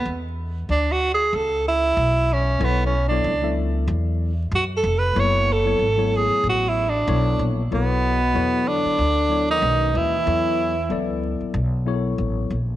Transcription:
X:1
M:4/4
L:1/16
Q:"Swing 16ths" 1/4=94
K:Bdor
V:1 name="Tenor saxophone"
B,2 z2 (3D2 F2 G2 A2 E4 C2 | (3B,2 C2 D2- D2 z6 (3F2 A2 B2 | c2 A4 G2 (3F2 E2 D2- D2 z2 | B,6 D4- D ^D3 E2- |
E6 z8 z2 |]
V:2 name="Tine electric piano"
z16 | [F,B,EAc]2 z [F,B,EAc] z [F,B,EAe]6 z4 z | [F,B,EAc]2 z [F,B,EAc] z [F,A,B,EGc]6 z [F,B,EAc]3 z | [F,B,EAc]3 z [F,B,EAc]4 z2 [F,B,EAc]2 [G,CFB^d]3 z |
[F,B,EAc]3 z [F,B,EAd]4 z2 [F,B,EGAc]4 z2 |]
V:3 name="Trombone" clef=bass
z16 | z16 | z16 | B,,6 D,4- D, ^D,3 E,2- |
E,6 z8 z2 |]
V:4 name="Upright bass" clef=bass
E,,4 D,,4 C,,4 B,,,4 | B,,,4 C,,4 E,,4 F,,2 ^E,,,2 | F,,,4 G,,,3 z A,,,4 B,,,2 ^A,,,2 | B,,,4 E,,3 z D,,4 B,,,2 ^D,,2 |
E,,4 C,,3 z B,,,4 A,,,2 ^A,,,2 |]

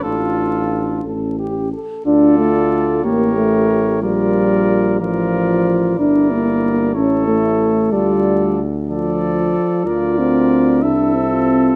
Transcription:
X:1
M:6/8
L:1/16
Q:3/8=62
K:Dm
V:1 name="Cornet"
A6 z6 | d6 ^c6 | d6 d6 | d6 ^c6 |
d4 z2 d6 | d6 e6 |]
V:2 name="Trumpet"
F6 z6 | A6 B6 | B6 B6 | B6 A6 |
A4 z2 A6 | B6 A6 |]
V:3 name="French horn"
F6 A2 G2 A2 | F6 G6 | F6 F6 | E6 E6 |
F4 z2 F6 | F6 E3 F3 |]
V:4 name="Euphonium"
D6 ^C4 z2 | D2 A,4 B,2 A,4 | G,6 F,6 | D2 B,4 ^C2 A,4 |
G,4 z2 F,6 | F2 C4 D2 C4 |]
V:5 name="Bass trombone" clef=bass
A,,,6 A,,,4 z2 | D,,6 A,,,6 | B,,,6 A,,,6 | G,,,6 A,,,6 |
D,,8- D,,2 z2 | D,,6 C,,6 |]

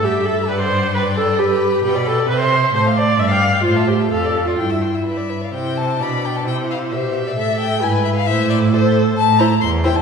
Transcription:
X:1
M:2/4
L:1/16
Q:1/4=132
K:G
V:1 name="Violin"
b4 f4 | g4 b4 | [K:C] g b g b g c' g c' | a c' a c' b d' b d' |
c' a c' a a f a f | c' e' c' e' e3 f | g2 a2 b2 g a | g2 f2 c3 d |
e2 g2 ^g2 e f | e2 d2 c2 z2 | [K:Aphr] a2 b2 c'2 g a |]
V:2 name="Violin"
e4 d4 | d4 B4 | [K:C] B d B d c e c e | c f c f d g d g |
c e c e f d f d | g e g e B d B d | c4 d4 | c4 e4- |
e4 B4 | c4 c4 | [K:Aphr] z2 c z3 c z |]
V:3 name="Viola"
G2 A2 B c3 | B2 A2 G4 | [K:C] G2 A2 B c3 | c2 d2 e f3 |
F2 G2 A3 F | E4 z4 | E4 D4 | E4 G4 |
A4 E4 | E4 A4 | [K:Aphr] z2 E z3 E z |]
V:4 name="Cello" clef=bass
G,,8- | G,,8 | [K:C] B,,4 C,4 | A,,4 G,,4 |
A,,4 F,,4 | G,,4 G,,4 | C,4 B,,4 | C,4 B,,4 |
A,,4 ^G,,4 | A,,8 | [K:Aphr] A,,4 E,,4 |]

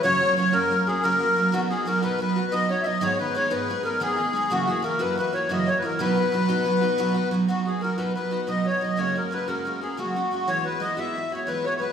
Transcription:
X:1
M:9/8
L:1/16
Q:3/8=121
K:B
V:1 name="Accordion"
c4 c2 A4 G2 A6 | F2 G2 A2 B2 B4 d2 c3/2 e/2 d2 | c2 B2 c2 B4 A2 G6 | F2 G2 A2 B2 B2 c2 d2 c3/2 B/2 A2 |
B16 z2 | F2 G2 A2 B2 B4 d2 c2 d2 | c2 A2 B2 A4 G2 F6 | c2 B2 d2 e4 c2 B2 c3/2 c/2 B2 |]
V:2 name="Steel-string acoustic guitar"
[F,,C,F,A,CF]2 [F,A,CF]2 [F,A,CF]2 [F,,C,F,A,CF]2 [F,A,CF]2 [F,A,CF]2 [F,,C,F,A,CF]2 [F,A,CF]2 [F,A,CF]2 | [B,,F,B,DF]2 [B,DF]2 [F,B,DF]2 [B,,F,B,DF]2 [F,B,DF]2 [B,DF]2 [B,,F,B,DF]2 [B,DF]2 [F,B,DF]2 | [G,,D,G,B,DG]2 [G,B,DG]2 [G,B,DG]2 [G,,D,G,B,DG]2 [G,B,DG]2 [G,B,DG]2 [G,,D,G,B,DG]2 [G,B,DG]2 [G,B,DG]2 | [F,,C,E,A,EF]2 [E,A,EF]2 [E,A,EF]2 [F,,C,E,A,EF]2 [E,A,EF]2 [E,A,EF]2 [F,,C,E,A,EF]2 [E,A,EF]2 [E,A,EF]2 |
[B,,F,B,DF]2 [B,DF]2 [F,B,DF]2 [B,,F,B,DF]2 [F,B,DF]2 [B,DF]2 [B,,F,B,DF]2 [B,DF]2 [F,B,DF]2 | [B,,F,B,DF]2 [B,DF]2 [F,B,DF]2 [B,,F,B,DF]2 [F,B,DF]2 [B,DF]2 [B,,F,B,DF]2 [B,DF]2 [F,B,DF]2 | [F,,C,G,A,CF]2 [G,A,CF]2 [G,A,CF]2 [F,,C,G,A,CF]2 [G,A,CF]2 [G,A,CF]2 [F,,C,G,A,CF]2 [G,A,CF]2 [G,A,CF]2 | [E,G,B,EF]2 [B,EF]2 [G,B,EF]2 [E,G,B,EF]2 [G,B,EF]2 [B,EF]2 [E,G,B,EF]2 [B,EF]2 [G,B,EF]2 |]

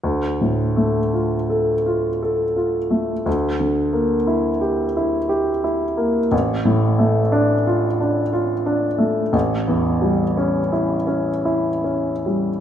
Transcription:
X:1
M:9/8
L:1/8
Q:3/8=58
K:Dm
V:1 name="Grand piano"
D,, A,, A, F A F A F A, | D,, D, B, E G E G E B, | A,,, A,, A, D F D F D A, | A,,, E,, G, ^C E C E C G, |]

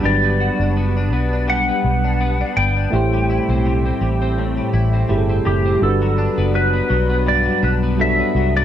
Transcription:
X:1
M:4/4
L:1/16
Q:"Swing 16ths" 1/4=83
K:G
V:1 name="Electric slide guitar"
d8 f6 g2- | g6 z8 G2 | A4 B4 d2 B2 e3 d |]
V:2 name="Synth keys"
[F,G,DB]16 | [A,EGc]12 [A,EG_A=A]4 | [G,DFB]12 [G,DFA]4 |]
V:3 name="Brass ensemble"
[B,DB]16 | [A,CG]16 | [B,DFB]16 |]
V:4 name="Clean electric guitar"
G, B, F D B, D B, D G, B,2 D B, D B, D | A,, G, E C G, C G, C A,, G, E C G, C G, C | z F, D B, F, B, F, B, G,, F, D B, F, B, F, B, |]
V:5 name="Fingered electric bass" clef=bass
G,,,3 F,,,3 B,,,4 B,,,4 G,,,2 | A,,,3 B,,,3 A,,,4 A,,,2 G,,,2 F,,,2 | G,,,3 F,,,3 B,,,4 B,,,4 C,,2 |]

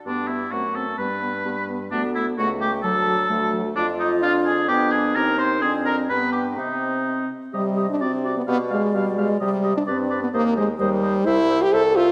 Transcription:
X:1
M:2/4
L:1/16
Q:1/4=129
K:G
V:1 name="Flute"
d2 e2 f2 a2 | b6 z2 | d2 e2 f2 g2 | a6 z2 |
[K:Cm] d2 e2 f2 a2 | g2 a2 b2 c'2 | a2 b2 =b2 g2 | e6 z2 |
e4 d4- | d8- | d8 | G4 c4- |
[K:C] c8 |]
V:2 name="Oboe"
D2 E2 F2 A2 | B6 z2 | D2 E2 F2 G2 | A6 z2 |
[K:Cm] D2 E2 F2 A2 | G2 A2 B2 c2 | A2 B2 =B2 G2 | E6 z2 |
e2 e2 d2 d2 | f2 f2 f2 f2 | e2 e2 d2 d2 | e2 e2 e2 e2 |
[K:C] e2 e2 e2 e2 |]
V:3 name="Clarinet"
B,4 A,4 | G,8 | B,4 A,4 | F,4 A,4 |
[K:Cm] F8 | D4 E4 | C4 =B,4 | C6 z2 |
G2 G2 ^F2 F2 | G2 G2 G2 G2 | G2 G2 =B2 B2 | c2 c2 c2 c2 |
[K:C] c2 c2 c2 c2 |]
V:4 name="French horn"
B,2 B,2 C2 C2 | B,2 B,2 B,2 B,2 | A,2 A,2 A,2 A,2 | F,2 F,2 F,2 F,2 |
[K:Cm] F4 D4 | =B,4 C4 | D4 =B,4 | C6 z2 |
G,3 D C3 =B, | =B,2 A,2 G,2 A,2 | G,3 D C3 =B, | B,2 A,2 G,4 |
[K:C] E3 G A2 F2 |]
V:5 name="Bassoon" clef=bass
G,,4 F,,4 | G,,4 G,,4 | D,,4 ^C,,4 | D,,4 D,,4 |
[K:Cm] F,,8 | F,,4 E,,4 | F,,4 G,,4 | C,6 z2 |
C,4 C,4 | =B,,4 B,,4 | C,4 G,,4 | E,,4 E,,4 |
[K:C] C,,4 C,,4 |]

